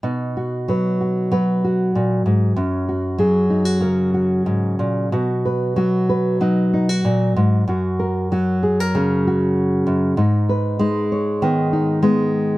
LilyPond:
\new Staff \with { instrumentName = "Nylon-string guitar" } { \time 4/4 \key b \major \tempo 4 = 95 << { dis'8 fis'8 b'8 fis'8 b'8 fis'4. | cis'8 fis'8 gis'8 dis'16 fis'16 ais'8 fis'4. | fis'8 b'8 fis'8 b'8 dis'8 dis'16 fis'4~ fis'16 | fis'8 ais'8 fis'8 gis'16 ais'16 cis'8 fis'4. |
dis'8 b'8 dis'8 cis''8 b8 dis'8 b4 | } \\ { b,4 fis4 fis4 ais,8 gis,8 | fis,4 fis4 cis4 gis,8 ais,8 | b,4 fis4 fis4 ais,8 gis,8 | fis,4 fis4 cis4. fis,8 |
gis,4 gis4 dis4 gis4 | } >> }